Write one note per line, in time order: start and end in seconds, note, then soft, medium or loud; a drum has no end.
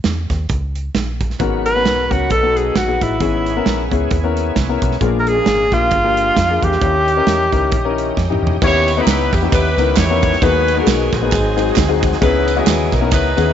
0.04 0.26 E2 medium
0.04 snare loud
0.04 closed hi-hat medium
0.30 0.46 D#2 medium
0.30 kick medium
0.30 snare soft
0.30 closed hi-hat medium
0.49 0.88 C#2 medium
0.49 kick loud
0.49 closed hi-hat medium
0.75 closed hi-hat medium
0.95 1.33 A#1 medium
0.95 kick medium
0.95 snare medium
0.95 closed hi-hat medium
1.21 kick medium
1.21 closed hi-hat medium
1.30 snare soft
1.39 1.86 G#1 loud
1.39 2.07 G#2 medium
1.39 2.28 F#3 medium
1.39 2.28 B3 medium
1.39 1.68 B3 medium
1.39 2.28 C#4 medium
1.39 1.68 C#4 medium
1.39 1.68 F#4 medium
1.39 1.68 A#4 medium
1.39 2.28 B4 medium
1.39 kick loud
1.39 closed hi-hat medium
1.66 2.13 B4 loud
1.66 closed hi-hat medium
1.75 2.01 B3 medium
1.75 2.01 C#4 medium
1.75 2.01 F#4 medium
1.75 2.02 A#4 medium
1.85 2.08 B1 medium
1.85 snare loud
1.85 closed hi-hat medium
2.10 2.27 C#2 medium
2.10 2.30 B3 medium
2.10 2.30 C#4 medium
2.10 2.30 F#4 medium
2.10 2.31 F#4 medium
2.10 2.30 A#4 medium
2.10 kick medium
2.10 closed hi-hat medium
2.30 2.69 B1 medium
2.30 2.97 B2 medium
2.30 3.19 F#3 medium
2.30 3.19 B3 medium
2.30 2.37 D4 soft
2.30 3.19 A4 medium
2.30 2.58 A4 loud
2.30 kick loud
2.30 closed hi-hat medium
2.37 3.22 D#4 medium
2.43 2.75 B3 medium
2.43 2.75 D#4 medium
2.43 2.75 F#4 medium
2.43 2.75 A4 medium
2.57 2.78 G#4 medium
2.57 closed hi-hat medium
2.76 2.98 A#1 medium
2.76 3.05 F#4 medium
2.76 kick medium
2.76 snare medium
2.76 closed hi-hat medium
2.88 3.13 B3 medium
2.88 3.13 D#4 medium
2.88 3.13 F#4 medium
2.88 3.13 G#4 medium
3.02 3.18 A1 medium
3.02 3.92 E4 medium
3.02 kick medium
3.02 closed hi-hat medium
3.20 3.59 G#1 loud
3.20 3.88 G#2 medium
3.20 4.97 B3 medium
3.20 3.49 B3 medium
3.20 3.49 C#4 medium
3.20 4.98 C#4 medium
3.20 4.98 E4 medium
3.20 3.49 E4 medium
3.20 4.97 G#4 medium
3.20 3.49 G#4 medium
3.20 kick loud
3.20 closed hi-hat medium
3.46 closed hi-hat medium
3.57 3.82 B3 medium
3.57 3.82 C#4 medium
3.57 3.82 E4 medium
3.57 3.82 A#4 medium
3.66 3.88 A#1 medium
3.66 snare loud
3.66 closed hi-hat medium
3.91 4.08 C#2 medium
3.91 4.14 B3 medium
3.91 4.14 C#4 medium
3.91 4.14 E4 medium
3.91 4.14 G#4 medium
3.91 kick medium
3.91 closed hi-hat medium
4.11 4.49 D#2 medium
4.11 kick loud
4.11 closed hi-hat medium
4.24 4.56 B3 medium
4.24 4.56 C#4 medium
4.24 4.56 E4 medium
4.24 4.56 A#4 loud
4.37 closed hi-hat medium
4.56 4.78 C2 medium
4.56 kick medium
4.56 snare medium
4.56 closed hi-hat loud
4.69 4.94 B3 medium
4.69 4.94 C#4 medium
4.69 4.94 E4 medium
4.69 4.94 A#4 medium
4.82 4.98 B1 loud
4.82 kick medium
4.82 closed hi-hat medium
4.91 snare soft
5.01 5.39 A#1 loud
5.01 5.68 A#2 medium
5.01 6.78 F3 medium
5.01 6.78 G#3 medium
5.01 5.29 A#3 medium
5.01 6.78 A#3 medium
5.01 5.29 D4 medium
5.01 6.78 D4 medium
5.01 5.29 F4 medium
5.01 5.29 G#4 medium
5.01 kick loud
5.01 closed hi-hat medium
5.20 5.30 A#4 medium
5.27 5.75 G#4 loud
5.27 closed hi-hat medium
5.36 5.62 A#3 medium
5.36 5.62 D4 medium
5.36 5.62 F4 medium
5.36 5.62 G#4 medium
5.46 5.68 G#1 medium
5.46 snare loud
5.46 closed hi-hat medium
5.72 5.88 A#1 medium
5.72 5.95 A#3 medium
5.72 5.95 D4 medium
5.72 5.95 F4 medium
5.72 6.65 F4 loud
5.72 5.95 G4 medium
5.72 kick medium
5.72 snare soft
5.72 closed hi-hat medium
5.91 6.30 G1 medium
5.91 kick loud
5.91 closed hi-hat medium
6.04 6.36 A#3 medium
6.04 6.36 D4 medium
6.04 6.36 F4 medium
6.04 6.37 G4 medium
6.17 closed hi-hat medium
6.36 6.59 F2 medium
6.36 kick medium
6.36 snare loud
6.36 closed hi-hat loud
6.50 6.74 A#3 medium
6.50 6.74 D4 medium
6.50 6.74 F4 medium
6.50 6.75 G#4 medium
6.63 6.79 E2 medium
6.63 8.17 G4 medium
6.63 kick medium
6.63 closed hi-hat medium
6.72 snare soft
6.81 7.20 D#2 loud
6.81 8.58 D#3 medium
6.81 7.49 D#3 medium
6.81 8.58 C#4 medium
6.81 7.10 C#4 medium
6.81 7.10 D#4 medium
6.81 7.10 E4 medium
6.81 6.88 F#4 soft
6.81 7.10 G4 medium
6.81 8.58 D#5 medium
6.81 kick loud
6.81 closed hi-hat medium
6.87 8.61 G4 medium
7.08 closed hi-hat medium
7.16 7.42 C#4 medium
7.16 7.42 D#4 medium
7.16 7.43 E4 medium
7.16 7.42 A#4 medium
7.27 7.49 E2 medium
7.27 snare loud
7.27 closed hi-hat medium
7.52 7.72 C#2 medium
7.52 7.75 C#4 medium
7.52 7.75 D#4 medium
7.52 7.75 E4 medium
7.52 7.75 A#4 medium
7.52 kick medium
7.52 closed hi-hat medium
7.72 8.10 A#1 medium
7.72 kick loud
7.72 closed hi-hat medium
7.85 8.17 C#4 medium
7.85 8.17 D#4 medium
7.85 8.17 E4 medium
7.85 8.17 A#4 loud
7.98 closed hi-hat medium
8.17 8.39 F2 medium
8.17 kick medium
8.17 snare soft
8.30 8.55 C#4 medium
8.30 8.55 D#4 medium
8.30 8.55 E4 medium
8.30 8.55 G4 medium
8.30 mid tom medium
8.42 8.59 E2 medium
8.47 floor tom loud
8.62 9.00 D#2 loud
8.62 10.38 D#3 medium
8.62 9.29 D#3 medium
8.62 8.90 B3 medium
8.62 10.39 B3 medium
8.62 8.90 C#4 medium
8.62 10.38 C#4 medium
8.62 8.90 D#4 medium
8.62 8.90 E4 medium
8.62 10.39 E4 medium
8.62 8.97 E4 medium
8.62 8.68 F#4 medium
8.62 8.90 G4 medium
8.62 8.97 G4 medium
8.62 8.96 C#5 loud
8.62 kick loud
8.62 crash loud
8.62 tambourine medium
8.67 10.41 G4 medium
8.88 ride medium
8.88 tambourine medium
8.97 9.32 B3 medium
8.97 9.32 C#4 medium
8.97 9.32 E4 medium
8.97 9.52 E4 medium
8.97 9.33 G4 medium
8.97 9.02 A4 medium
8.97 9.33 B4 loud
8.97 9.33 D#5 medium
9.03 9.28 C#2 loud
9.03 9.35 A#5 medium
9.07 snare loud
9.07 clap medium
9.07 ride medium
9.07 tambourine medium
9.33 9.49 E2 medium
9.33 9.52 G4 medium
9.33 kick medium
9.33 ride medium
9.33 tambourine medium
9.43 9.68 B3 medium
9.43 9.68 C#4 medium
9.43 9.68 D#4 medium
9.43 9.68 E4 medium
9.43 9.68 G4 medium
9.52 9.74 D#2 medium
9.52 9.96 E4 medium
9.52 9.96 G4 medium
9.52 9.94 B4 medium
9.52 kick loud
9.52 clap medium
9.52 ride medium
9.52 tambourine medium
9.77 9.94 C#2 medium
9.77 10.00 B3 medium
9.77 10.00 C#4 medium
9.77 10.00 D#4 medium
9.77 10.00 E4 medium
9.77 10.00 A#4 medium
9.77 ride medium
9.77 tambourine medium
9.97 10.35 E2 medium
9.97 10.39 E4 medium
9.97 10.39 G4 medium
9.97 10.42 C#5 loud
9.97 kick medium
9.97 snare medium
9.97 clap medium
9.97 ride medium
9.97 tambourine loud
10.10 10.35 B3 medium
10.10 10.35 C#4 medium
10.10 10.35 D#4 medium
10.10 10.35 E4 medium
10.10 10.35 A#4 medium
10.22 kick loud
10.22 ride medium
10.22 tambourine medium
10.33 snare soft
10.42 10.80 D#2 loud
10.42 11.09 D#3 medium
10.42 11.30 F#3 medium
10.42 11.30 G#3 medium
10.42 10.70 A#3 medium
10.42 11.30 B3 medium
10.42 10.70 B3 medium
10.42 11.30 D#4 medium
10.42 10.70 D#4 medium
10.42 10.76 F#4 medium
10.42 10.70 F#4 medium
10.42 11.30 G#4 medium
10.42 10.70 G#4 medium
10.42 11.12 G#4 medium
10.42 10.77 B4 medium
10.42 kick loud
10.42 ride medium
10.42 tambourine medium
10.68 ride medium
10.68 tambourine medium
10.77 11.12 B3 medium
10.77 11.12 D#4 medium
10.77 11.12 F#4 medium
10.77 11.28 F#4 medium
10.77 10.82 A#4 medium
10.77 11.13 A#4 loud
10.83 11.15 G#4 medium
10.87 11.09 B1 medium
10.87 snare loud
10.87 clap medium
10.87 ride medium
10.87 tambourine medium
11.13 11.29 A#1 loud
11.13 11.99 C4 medium
11.13 11.99 D#4 medium
11.13 12.03 G#4 medium
11.13 kick medium
11.13 snare soft
11.13 ride medium
11.13 tambourine medium
11.22 11.32 A#3 medium
11.22 11.32 B3 medium
11.22 11.32 D#4 medium
11.22 11.32 F#4 medium
11.22 11.32 B4 medium
11.31 11.70 G#1 loud
11.31 11.98 G#2 medium
11.31 12.20 F#3 medium
11.31 12.20 G#3 medium
11.31 12.20 C4 medium
11.31 12.20 D#4 medium
11.31 12.20 G#4 medium
11.31 kick loud
11.31 clap medium
11.31 ride medium
11.31 tambourine medium
11.56 11.79 G#3 medium
11.56 11.79 C4 medium
11.56 11.79 D#4 medium
11.56 11.79 F#4 medium
11.56 11.79 G#4 medium
11.56 ride medium
11.56 tambourine medium
11.76 12.15 D2 medium
11.76 kick loud
11.76 snare loud
11.76 clap loud
11.76 ride medium
11.76 tambourine medium
11.89 12.14 G#3 medium
11.89 12.14 C4 medium
11.89 12.14 D#4 medium
11.89 12.14 F#4 medium
11.89 12.14 G#4 loud
12.03 kick loud
12.03 ride medium
12.03 tambourine soft
12.12 snare soft
12.21 12.60 C#2 loud
12.21 12.88 C#3 medium
12.21 12.28 D#3 medium
12.21 12.50 B3 medium
12.21 13.53 B3 medium
12.21 12.50 C#4 medium
12.21 13.53 C#4 medium
12.21 12.50 D#4 medium
12.21 13.08 D#4 medium
12.21 12.50 E4 medium
12.21 12.57 E4 medium
12.21 12.50 G#4 loud
12.21 13.53 G#4 medium
12.21 12.55 B4 medium
12.21 13.53 D#5 medium
12.21 kick loud
12.21 ride medium
12.21 tambourine medium
12.27 13.53 E3 medium
12.48 ride medium
12.48 tambourine medium
12.56 12.92 E3 medium
12.56 12.92 B3 medium
12.56 13.44 B3 medium
12.56 12.92 C#4 medium
12.56 13.12 E4 medium
12.56 12.92 F#4 medium
12.56 12.93 G#4 medium
12.56 12.92 D#5 medium
12.67 12.89 D#2 medium
12.67 snare loud
12.67 clap medium
12.67 ride medium
12.67 tambourine medium
12.92 13.12 B1 medium
12.92 13.12 A#4 medium
12.92 kick medium
12.92 snare soft
12.92 ride medium
12.92 tambourine medium
13.01 13.27 B3 medium
13.01 13.27 C#4 medium
13.01 13.27 D#4 medium
13.01 13.27 E4 medium
13.01 13.27 A#4 medium
13.11 13.34 C#2 loud
13.11 13.53 D#4 medium
13.11 13.53 E4 medium
13.11 13.53 B4 medium
13.11 kick loud
13.11 clap medium
13.11 ride medium
13.11 tambourine medium
13.37 13.53 D#2 loud
13.37 13.53 B3 medium
13.37 13.53 C#4 medium
13.37 13.53 D#4 medium
13.37 13.53 E4 medium
13.37 13.53 G#4 medium
13.37 ride medium
13.37 tambourine medium